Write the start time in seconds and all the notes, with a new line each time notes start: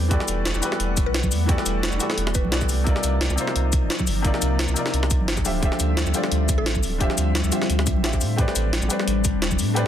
Already playing: E2 G3 A3 G4 B4 C5 D5
0.08 E3 A3 B3 F#4 G4 F#5, kick, closed hi-hat
0.12 A4 D5
0.20 snare
0.28 E1, closed hi-hat, shaker
0.45 snare, closed hi-hat
0.55 E1, high bongo, shaker
0.60 E3 B3 F#4 G4, closed hi-hat, shaker
0.64 A4 B4
0.72 snare, high bongo
0.80 E1, closed hi-hat
0.97 kick, closed hi-hat, shaker
1.06 B1 B4
1.14 snare, closed hi-hat
1.23 kick, high conga, shaker
1.32 E2, open hi-hat, shaker
1.46 E3 B3 F#4 G4, kick, closed hi-hat
1.50 A4 D5
1.58 snare
1.66 E1, closed hi-hat, shaker
1.83 snare, closed hi-hat
1.93 E1, shaker
1.98 E3 B3 F#4 G4, closed hi-hat, shaker
2.02 A4 D5
2.10 A4, snare, high bongo
2.17 E1, closed hi-hat
2.27 snare, high bongo
2.35 B4, kick, closed hi-hat, shaker
2.44 B1, high conga
2.51 E3 B3 F#4 G4 A4 D5, snare, closed hi-hat, high bongo
2.61 kick, snare, shaker
2.69 C2, open hi-hat, shaker
2.84 C3 F3 A#3 D#4 F4, kick, closed hi-hat
2.89 D5
2.96 snare
3.04 C2, closed hi-hat, shaker
3.21 snare, closed hi-hat
3.30 C2, high bongo, shaker
3.36 C3 A#3 D#4 F4, closed hi-hat, shaker
3.41 C5
3.47 snare, high bongo
3.56 C2, closed hi-hat
3.73 kick, closed hi-hat, shaker
3.82 G1
3.90 snare, closed hi-hat
3.99 kick, high conga, shaker
4.07 G1, open hi-hat, shaker
4.22 C3 A#3 D#4 F4, kick, closed hi-hat
4.27 D5
4.34 snare
4.42 C2, closed hi-hat, shaker
4.59 snare, closed hi-hat
4.69 C2, shaker
4.74 C3 A#3 D#4 F4, closed hi-hat, shaker
4.79 D5
4.85 snare, high bongo
4.94 C2, closed hi-hat
5.03 snare, high bongo
5.11 kick, closed hi-hat, shaker
5.20 G1, high conga
5.28 snare, closed hi-hat, high bongo
5.37 kick, snare, shaker
5.44 D1 D3 G3 A3 C4 F4 G4 C5 E5, open hi-hat, high conga, shaker
5.60 D3 A3 F4 G4 C5, kick, closed hi-hat
5.65 E5
5.72 snare
5.80 D2, closed hi-hat, shaker
5.97 snare, closed hi-hat
6.06 D2, high bongo, shaker
6.12 D3 A3 F4 G4, closed hi-hat, shaker
6.16 C5 D5
6.23 snare, high bongo
6.32 D2, closed hi-hat
6.49 kick, closed hi-hat, shaker
6.58 A1 A4
6.66 snare, closed hi-hat
6.75 kick, high conga, shaker
6.83 D1, open hi-hat, shaker
6.98 D3 A3 F4 G4 C5, kick, closed hi-hat
7.03 E5
7.10 snare
7.18 D2, closed hi-hat, shaker
7.35 snare, closed hi-hat
7.44 D2, shaker
7.50 D3 A3 F4 G4, closed hi-hat, shaker
7.54 C5 E5
7.62 snare, high bongo
7.70 D2, closed hi-hat
7.79 snare, high bongo
7.87 kick, closed hi-hat, shaker
7.96 A1, high conga
8.03 D3 A3 F4 G4 C5 E5, snare, closed hi-hat, high bongo
8.13 kick, snare, shaker
8.21 A2, open hi-hat, shaker
8.36 A3 C4 D4 G4 B4 C5, kick, closed hi-hat
8.41 D5
8.48 snare
8.56 A1, closed hi-hat, shaker
8.73 snare, closed hi-hat
8.82 A1, high bongo, shaker
8.88 A3 G4 B4 C5, closed hi-hat, shaker
8.93 D5
8.99 snare, high bongo
9.07 A1, closed hi-hat
9.25 kick, closed hi-hat, shaker
9.34 E1
9.42 snare, closed hi-hat
9.51 kick, high conga, shaker
9.59 A2, open hi-hat, shaker
9.74 A3 G4 B4 C5, closed hi-hat
9.79 D5